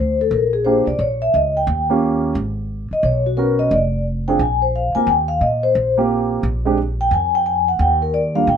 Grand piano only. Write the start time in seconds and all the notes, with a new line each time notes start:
0.66 A#3 D4 F4 G4
1.90 A#3 C#4 F4 G4
3.37 B3 C#4 F#4 A#4
4.28 C4 D4 F4 G#4
4.95 A#3 C4 F4 A#4
5.97 A#3 C4 F4 G4
6.65 G#3 C4 D4 G4
8.35 G3 A#3 D4 F4